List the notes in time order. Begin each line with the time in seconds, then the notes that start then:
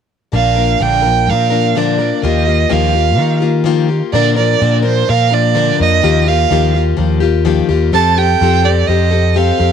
0.32 A#1 A#2 D3 F3 A#3 D4 A#4 F5
0.56 F3 A#3 D4 A#4
0.80 A#1 A#2 D3 F3 A#3 D4 A#4 G5
1.02 F3 A#3 D4 A#4
1.27 A#2 F3 A#3 D4 A#4 F5
1.50 F3 A#3 D4 A#4
1.75 A#2 D3 F3 A#3 D4 A#4 D5
1.99 F3 A#3 D4 A#4
2.22 D#2 D#3 F3 A#3 F4 G4 D#5
2.46 A#3 F4 G4
2.69 D#2 D#3 F3 A#3 F4 G4 F5
2.93 A#3 F4 G4
3.17 D#3 F3 A#3 F4 G4
3.40 A#3 F4 G4
3.64 D#3 F3 A#3 F4 G4
3.89 A#3 F4 G4
4.12 A#2 D3 F3 A#3 D4 A#4 D5
4.36 F3 A#3 D4 A#4 D5
4.60 A#2 D3 F3 A#3 D4 A#4
4.82 F3 A#3 D4 A#4 C5
5.07 A#2 F3 A#3 D4 A#4 F5
5.31 F3 A#3 D4 A#4 D5
5.54 A#2 D3 F3 A#3 D4 A#4
5.78 F2 F3 A#3 D4 A#4
5.82 D#5
6.02 D#2 D#3 F3 A#3 F4 G4
6.26 A#3 F4 G4 F5
6.50 D#2 D#3 F3 A#3 F4 G4
6.74 A#3 F4 G4
6.97 D#2 F3 A#3 F4 G4
7.20 A#3 F4 G4
7.45 D#3 F3 A#3 F4 G4
7.69 D#2 A#3 F4 G4
7.92 F2 F3 C4 G4 A4 A5
8.16 C4 G4 A4 G5
8.41 F2 F3 C4 G4 A4
8.64 C4 G4 A4 D5
8.87 F2 F3 C4 G4 A4 D#5
9.11 C4 G4 A4
9.34 F3 C4 G4 A4 F5
9.58 F2 C4 G4 A4